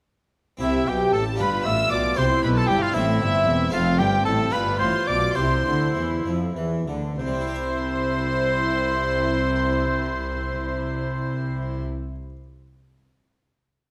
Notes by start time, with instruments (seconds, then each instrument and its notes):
0.57 harpsichord C4 E4 G4, oboe E4, violin section E5
0.61 double bass section C2, cello section C3, harpsichord C3, viola section G4, violin section E5
0.87 double bass section B1, cello section B2, harpsichord B2, oboe G4, violin section G5
1.13 double bass section A1, cello section A2, harpsichord A2, oboe A4, violin section A5
1.36 double bass section G1, cello section G2, harpsichord D4 F4 G4, viola section F4, violin section B5
1.40 harpsichord G2, oboe B4, violin section B5
1.65 double bass section A1, cello section A2, harpsichord A2, oboe E5, violin section E6
1.91 double bass section B1, harpsichord B2, cello section B2, oboe D5, violin section D6
2.13 cello section C3, harpsichord C4 E4 G4, oboe C5, violin section C6
2.17 double bass section C2, harpsichord C3, viola section E4, violin section C6
2.43 double bass section B1, cello section B2, harpsichord B2, oboe B4, violin section B5
2.56 oboe A4, violin section A5
2.68 double bass section G1, cello section G2, harpsichord G2, oboe G4, violin section G5
2.82 oboe F4, violin section F5
2.92 double bass section A1, cello section A2, harpsichord C4 E4 A4, viola section C4, oboe E4, violin section E5
2.96 harpsichord A2
3.21 double bass section G1, cello section G2, harpsichord G2
3.47 double bass section E1, cello section E2, harpsichord E2
3.69 double bass section F1, cello section F2, harpsichord C4 F4 A4, violin section F5
3.73 harpsichord F2, viola section C4, oboe F4, violin section F5
3.99 double bass section G1, cello section G2, harpsichord G2, oboe G4, violin section G5
4.25 double bass section A1, cello section A2, harpsichord A2, oboe A4, violin section A5
4.50 double bass section G1, cello section G2, harpsichord G2 F4 G4, viola section F4, oboe B4, violin section B5
4.79 double bass section A1, harpsichord A2, cello section A2, oboe C5, violin section C6
5.07 double bass section B1, cello section B2, harpsichord B2, oboe D5, violin section D6
5.34 double bass section C2, cello section C3, harpsichord C3 E4 G4, viola section E4, oboe C5, violin section C6
5.65 double bass section D2, cello section D3, harpsichord D3
5.95 double bass section E2, cello section E3, harpsichord E3
6.25 double bass section F2, cello section F3, harpsichord F3
6.56 double bass section E2, cello section E3, harpsichord E3
6.87 double bass section D2, cello section D3, harpsichord D3
7.18 double bass section C2, cello section C3, harpsichord C3, viola section E4, oboe C5, violin section C5 C6
7.26 harpsichord G3
7.34 harpsichord C4
7.41 harpsichord E4
7.47 harpsichord G4
7.55 harpsichord E5